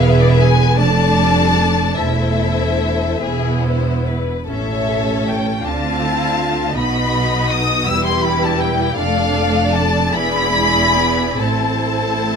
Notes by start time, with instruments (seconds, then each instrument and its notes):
Already playing: double bass section E1, cello section E2, viola section B3 G#4, violin section B4
0.02 violin section F5
0.11 violin section E5
0.20 violin section D5
0.31 violin section E5
0.40 violin section G#5
0.77 double bass section F1, cello section F2, viola section A3 D4, violin section A4 D5 A5
1.18 viola section G3
1.59 viola section A3
1.99 double bass section E1, cello section E2, viola section A3 E4, violin section A4 C5 E5
3.23 double bass section E1, cello section E2, viola section B3 E4, violin section G#4
3.65 violin section C5
4.07 violin section B4
4.48 double bass section A1, cello section A2, viola section C#4, violin section A4 C#5 E5
5.26 violin section G5
5.63 double bass section D2, cello section D3, viola section C4 D4, violin section F4 F5 A5
6.01 viola section E4
6.39 viola section F4
6.76 double bass section B1, cello section B2, viola section B3 D#4, violin section F#4 D#5 B5
7.49 violin section D#6
7.86 double bass section E1, cello section E2, viola section G3 E4, violin section G4 B4 E6
8.05 violin section C6
8.22 violin section B5
8.43 violin section A5
8.59 violin section G5
8.97 double bass section F1, cello section F2, viola section A3 D4, violin section A4 D5 F5
9.73 violin section A5
10.13 double bass section E1, cello section E2, viola section B3 E4, violin section G#4 D5 B5
10.54 viola section G#3
10.95 viola section B3
11.38 double bass section A1, cello section A2, viola section C4 E4, violin section A4 C5 A5